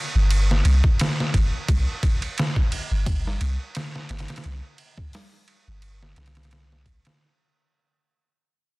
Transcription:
0.15 G1
0.31 ride
0.51 snare
0.65 C2, ride
0.84 kick
0.99 snare, ride
1.20 snare
1.34 G1, kick, ride
1.68 C2, kick, ride
2.03 kick, ride
2.22 ride
2.38 snare, ride
2.56 kick
2.72 ride
2.91 G1
3.06 kick, ride
3.27 snare
3.41 C2, ride
3.75 snare, ride
3.96 snare
4.09 G1, snare, ride
4.19 snare, ride
4.28 snare, ride
4.36 snare, ride
4.44 C2, ride
4.78 ride
4.98 kick
5.13 snare, open hi-hat
5.48 ride
5.68 G1
5.82 ride
6.03 snare
6.16 C2, snare, ride
6.26 snare, ride
6.35 snare, ride
6.43 snare, ride
6.51 snare, ride
6.72 snare
6.86 kick, ride
7.05 snare, ride

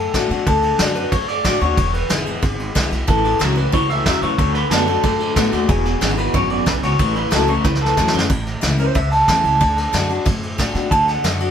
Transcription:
Already playing: A2 A4
0.14 A2 D3 A3 D4 F#4, kick, snare, ride
0.30 B2 D4 F#4, ride
0.46 D2 D3 A4, kick, ride
0.63 ride
0.79 F#2 D3 A3 D4 F#4, snare, ride
0.95 D4 F#4 B4, ride
1.11 F#2 A2 C#5, kick, ride
1.28 D5, ride
1.44 A2 D3 A3 D4 F#4 D5, kick, snare, ride
1.61 D#2 D4 F#4 C#5, ride
1.77 E1 E2, kick, ride
1.94 B4, ride
2.10 G#1 D3 G#3 B3 E4 G#4, snare, ride
2.26 B3 E4, ride
2.42 G#1 B2, kick, snare, ride
2.59 ride
2.75 B1 D3 G#3 B3 E4, kick, snare, ride
2.91 B1 B3 E4, snare, ride
3.08 A1 A2 E3 A4, kick, ride
3.24 A2 E3, ride
3.39 C#2 A2 E3 F#3 A3 C#4 E4, snare, ride
3.56 A2 E3 C#4 E4 B4, ride
3.72 C#2 A2 B2 E3 C#5, kick, ride
3.89 A2 E3 E5, ride
4.06 E2 A2 C#3 F#3 E5, kick, snare, ride
4.22 F#2 A2 E3 C#5, ride
4.38 D2 D3 A3, kick, ride
4.54 D3 A3 B4, snare, ride
4.70 F#2 D3 A3 B3 D4 F#4 A4, snare, ride
4.87 D3 A3 D4 F#4, ride
5.03 F#2 A2 D3 A3, kick, ride
5.20 D3 A3, ride
5.36 A2 D3 A3 B3 D4 F#4, kick, snare, ride
5.52 D#2 D3 A3 D4 F#4, snare, ride
5.68 E1 E2 B2 G#4, kick, ride
5.85 E2 B2, snare, ride
6.01 G#1 E2 C#3 D3 G#3 B3 E4, snare, ride
6.17 E2 B2 B3 E4 B4, ride
6.34 G#1 E2 F#2 B2 C#5, kick, ride
6.50 E2 B2 D5, ride
6.66 B1 E2 G#2 C#3 B4, kick, snare, ride
6.83 C#2 E2 B2 C#5, snare, ride
6.99 A1 A2 E3, kick, ride
7.15 A2 E3 B4, ride
7.31 C#2 A2 E3 F#3 A3 C#4 E4 A4, snare, ride
7.48 A2 E3 C#4 E4 C#5, ride
7.64 C#2 E2 A2 E3 B4, kick, snare
7.75 snare
7.81 A2 E3 A4
7.86 snare
7.97 E2 A2 E3 F#3 A3 C#4 E4, kick, snare
8.08 snare
8.13 F#2 A2 E3 C#4 E4
8.18 snare
8.30 A1 A2, kick, crash
8.46 snare, ride
8.61 C#2 E3 A3 C#4 E4, snare, ride
8.78 C#4 E4 C5, ride
8.95 C#2 E2 E5, kick, ride
9.12 A5, ride
9.27 E2 E3 A3 C#4 E4 A5, kick, snare, ride
9.44 C#2 C#4 E4, ride
9.61 D2 D3, kick, ride
9.78 snare, ride
9.93 F#2 D3 A3 D4 F#4, snare, ride
10.09 D4 F#4, ride
10.26 F#2 A2, kick, snare, ride
10.43 ride
10.58 A2 D3 A3 D4 F#4, kick, snare, ride
10.75 B2 D4 F#4, snare, ride
10.91 D2 D3 A5, kick, ride
11.07 F#5, snare, ride
11.24 F#2 D3 A3 D4 F#4 E5, snare, ride
11.39 D4 F#4 D5, ride

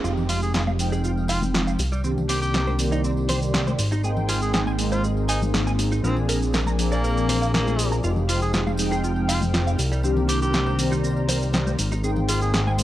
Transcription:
0.03 F1 F3 G#3 C4 D#4 F4 G4 F6, tambourine, shaker
0.17 tambourine, low conga
0.29 F4, open hi-hat, tambourine, shaker
0.42 G#4, tambourine, shaker
0.54 F4 G#4, snare, tambourine, shaker
0.67 F5, tambourine, high conga
0.78 F3 G#3 C4 D#4 G5, open hi-hat, tambourine, shaker
0.92 G#4, tambourine, shaker
1.04 F4, tambourine, shaker
1.17 tambourine
1.28 F4 F5, open hi-hat, tambourine, shaker
1.42 tambourine, high conga, low conga, shaker
1.54 F4, snare, tambourine, shaker
1.67 F5, tambourine, shaker
1.79 C2 A#4 C6, open hi-hat, tambourine, high bongo, shaker
1.92 G3, tambourine, shaker
2.03 D#3 A#3 C4 D4 G4, tambourine, shaker
2.18 tambourine, low conga
2.29 C4 G4, open hi-hat, tambourine, high bongo, shaker
2.42 G4, tambourine, shaker
2.54 C4, snare, tambourine, shaker
2.67 C5, tambourine, high conga
2.78 D#3 A#3 C4 G4 D5, open hi-hat, tambourine, shaker
2.92 D#4, tambourine, shaker
3.04 C4, tambourine, shaker
3.17 tambourine
3.29 C5, open hi-hat, tambourine, high bongo, low conga, shaker
3.42 tambourine, shaker
3.54 C4, snare, tambourine, low conga, shaker
3.67 C5, tambourine, high conga, shaker
3.79 G#1 G#3, open hi-hat, tambourine, shaker
3.92 D#4, tambourine, high bongo, shaker
4.03 G#3 A#3 C4 D#4 G#4 G5, tambourine, shaker
4.17 tambourine, low conga
4.29 F4 G#4, open hi-hat, tambourine, shaker
4.41 G#4, tambourine, shaker
4.53 G#4, snare, tambourine, shaker
4.66 G#5, tambourine, high conga
4.78 G#3 A#3 C4 D#4, open hi-hat, tambourine, shaker
4.92 F4 C5, tambourine, shaker
5.04 G#4, tambourine, shaker
5.17 tambourine
5.28 D#4 G#5, open hi-hat, tambourine, shaker
5.42 tambourine, high conga, low conga, shaker
5.54 G#4, snare, tambourine, shaker
5.67 G#5, tambourine, shaker
5.79 open hi-hat, tambourine, high bongo, shaker
5.91 D#4, tambourine, shaker
6.03 A#1 F3 A#3 C4 D4 G#4 A#4 G#5 D6, tambourine, shaker
6.17 tambourine, low conga
6.29 A#4, open hi-hat, tambourine, high bongo, shaker
6.42 tambourine, shaker
6.53 A#4, snare, tambourine, shaker
6.66 A#5, tambourine, high conga, shaker
6.78 F3 A#3 C4 D4 G#4, open hi-hat, tambourine, shaker
6.92 A#3 D5, tambourine, shaker
7.04 A#4, tambourine, shaker
7.17 tambourine, shaker
7.29 C5, open hi-hat, tambourine, high bongo, low conga, shaker
7.42 F5, tambourine, shaker
7.54 A#3 F5, snare, tambourine, low conga, shaker
7.67 G#4, tambourine, high conga, shaker
7.79 open hi-hat, tambourine, shaker
7.91 A#5, tambourine, high bongo, shaker
8.03 F1 F3 G#3 C4 D#4 F4 G4 G5 F6, tambourine, shaker
8.16 tambourine, low conga
8.29 F4, open hi-hat, tambourine, shaker
8.42 G#4, tambourine, shaker
8.53 F4 G#4, snare, tambourine, shaker
8.67 F5, tambourine, high conga
8.77 F3 G#3 C4 D#4 G5, open hi-hat, tambourine, shaker
8.91 G#4, tambourine, shaker
9.03 F4, tambourine, shaker
9.16 tambourine
9.29 F4 F5, open hi-hat, tambourine, shaker
9.41 tambourine, high conga, low conga, shaker
9.54 F4, snare, tambourine, shaker
9.67 F5, tambourine, shaker
9.78 C2 C5 A#5, open hi-hat, tambourine, high bongo, shaker
9.92 G3, tambourine, shaker
10.03 D#3 A#3 C4 D4 G4, tambourine, shaker
10.17 tambourine, low conga
10.28 C4 G4, open hi-hat, tambourine, high bongo, shaker
10.42 G4, tambourine, shaker
10.53 C4, snare, tambourine, shaker
10.66 C5, tambourine, high conga
10.78 D#3 A#3 C4 G4 D5, open hi-hat, tambourine, shaker
10.91 D#4, tambourine, shaker
11.04 C4, tambourine, shaker
11.17 tambourine
11.29 C5, open hi-hat, tambourine, high bongo, low conga, shaker
11.41 tambourine, shaker
11.53 C4, snare, tambourine, low conga, shaker
11.67 C5, tambourine, high conga, shaker
11.78 G#1 G#3 C6, open hi-hat, tambourine, shaker
11.92 D#4, tambourine, high bongo, shaker
12.03 G#3 A#3 C4 D#4 G#4 G5, tambourine, shaker
12.16 tambourine, low conga
12.29 F4 G#4, open hi-hat, tambourine, shaker
12.41 G#4, tambourine, shaker
12.53 G#4, snare, tambourine, shaker
12.67 G#5, tambourine, high conga
12.78 G#3 A#3 C4 D#4, open hi-hat, tambourine, shaker

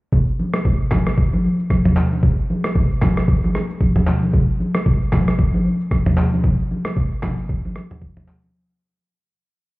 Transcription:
0.12 kick, low conga, shaker
0.28 shaker
0.39 high conga, shaker
0.54 cross-stick, shaker
0.65 kick, low conga, shaker
0.81 shaker
0.91 kick, cross-stick, clap, high conga, low conga, shaker
1.07 cross-stick, shaker
1.18 kick, shaker
1.33 high conga, shaker
1.44 high conga, shaker
1.59 shaker
1.70 kick, cross-stick, high conga, shaker
1.85 mid tom, high conga, shaker
1.96 clap, low conga, shaker
2.12 high conga, shaker
2.23 kick, low conga, shaker
2.38 shaker
2.49 high conga, shaker
2.64 cross-stick, shaker
2.76 kick, low conga, shaker
2.91 shaker
3.02 kick, cross-stick, clap, high conga, low conga, shaker
3.17 cross-stick, shaker
3.28 kick, shaker
3.44 high conga, shaker
3.54 cross-stick, high conga, shaker
3.70 shaker
3.81 kick, high conga, shaker
3.96 mid tom, high conga, shaker
4.07 clap, low conga, shaker
4.22 high conga, shaker
4.33 kick, low conga, shaker
4.49 shaker
4.60 high conga, shaker
4.75 cross-stick, shaker
4.86 kick, low conga, shaker
5.02 shaker
5.12 kick, cross-stick, clap, high conga, low conga, shaker
5.28 cross-stick, shaker
5.39 kick, shaker
5.54 high conga, shaker
5.65 high conga, shaker
5.80 shaker
5.91 kick, cross-stick, high conga, shaker
6.06 mid tom, high conga, shaker
6.17 clap, low conga, shaker
6.33 high conga, shaker
6.44 kick, low conga, shaker
6.59 shaker
6.70 high conga, shaker
6.85 cross-stick, shaker
6.96 kick, low conga, shaker
7.12 shaker
7.23 kick, cross-stick, clap, high conga, low conga, shaker
7.38 shaker
7.49 kick, shaker
7.64 high conga, shaker
7.75 cross-stick, high conga
7.91 mid tom, shaker
8.02 kick, high conga, shaker
8.17 mid tom, high conga
8.28 clap, low conga
8.44 high conga

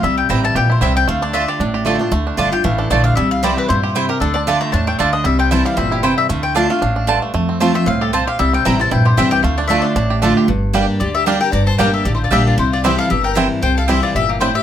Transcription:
0.03 C2 C3 G3 E5
0.18 G5
0.29 A1 E3 G3 C4 E4 C5 G5 A#5
0.44 E4 A5
0.55 A#1 A#2 G4 G5
0.70 E4 C5
0.81 C2 C3 G3 C4 E4 C5 E5 G5
0.96 C4 G5
1.07 D2 D3 A3 F5
1.22 D4 D5
1.33 D3 A3 D4 F4 D5 E5 A5
1.48 G4 D5
1.60 A1 A2 D4
1.74 G4
1.85 D3 A3 D4 F4 D5 A5
1.99 D4 F4
2.12 D2 D3 A3
2.27 D4
2.37 G1 D3 A3 D4 F4 D5 A5
2.52 D4 F4 G4 G5
2.64 A1 E3 A3 F5
2.78 D4 A4
2.90 A#1 D3 A3 F4 D5 A5
3.04 D4 F5
3.15 C2 C3 G3 E5
3.31 F5
3.43 E3 G3 C4 E4 C5 D5 G5
3.57 C4 B4
3.69 G2 A#2 E4 C5
3.83 G4
3.95 C3 C4 E4 C5 G5
4.09 G4 A#4
4.20 D2 D3 D4 A4
4.34 D4 D5
4.47 D3 A3 D4 F4 G4 D5 A5
4.61 A3 A#5
4.72 E2 A2 D4 A5
4.87 A3 G5
4.99 D2 D3 A3 D4 F4 D5 F5 A5
5.13 D4 D#5
5.24 C2 C3 G3 E5
5.39 C4 G5
5.51 E3 G3 C4 E4 C5 G5 A5
5.65 G3 F5
5.77 G1 A#2 C4 E5
5.91 E4 G4
6.03 C3 E3 C4 E4 C5 G5
6.18 G3 E5
6.29 D2 D3 A3 F5
6.43 G5
6.55 D3 A3 D4 F4 D5 F5 A5
6.70 A3 D4 F4 F5
6.82 A1 A2 D4
6.96 D4
7.07 G2 D3 A3 F4 D5 A5
7.22 A3
7.34 F2 A3
7.49 C4
7.60 F3 A3 C4 F4 C5 A5
7.74 C4 F4 E5
7.86 C2 A2 F4 F5
8.01 G4 A4
8.13 A#2 C4 F4 C5 A5
8.27 G4 F5
8.39 C2 C3 G3 E5
8.53 C4 G5
8.65 A1 E3 G3 C4 E4 C5 G5 A#5
8.79 C4 E4 A5
8.91 A#1 G2 E4 G5
9.05 G4 C5
9.17 C2 E3 G3 C4 E4 C5 E5 G5
9.31 G4 G5
9.43 D2 D3 A3 F5
9.58 D4 D5
9.68 D3 A3 D4 F4 D5 E5 A5
9.82 D4 D5
9.95 A1 A2 D4
10.10 G4
10.22 D3 A3 D4 F4 D5 A5
10.37 G4
10.48 G1 G2
10.73 G3 A#3 D4 G4 D5 G5
11.00 D2 D3 G4 D5
11.15 G4 E5
11.26 G3 A#3 D4 G4 A#4 D5 F5 G5
11.40 D4 G4 A#4 G5
11.52 G1 G2 D5 A#5
11.66 C5 A5
11.78 G1 G3 A#3 D4 G4 A#4 D5 G5
11.93 G4 E5
12.05 A1 D3 G4 D5
12.13 E4 C5
12.23 F4 D5
12.31 A#1 G3 A#3 D4 G4 D5 E5 G5
12.46 F4 D5
12.58 C2 C3 E4 C5
12.72 F4 D5
12.84 E3 G3 C4 E4 G4 C5 E5 G5
12.98 A4 F5
13.10 G1 G2 G4 E5
13.23 A#4 G5
13.35 E3 G3 C4 E4 C5 G5
13.62 C2 C3 C5 G5
13.76 A4 F5
13.88 E3 G3 C4 E4 G4 C5 E5 G5
14.02 F4 D5
14.14 G1 A#2 G4 E5
14.29 A#3 G4
14.40 A2 G3 C4 E4 C5 G5
14.55 G4 E5

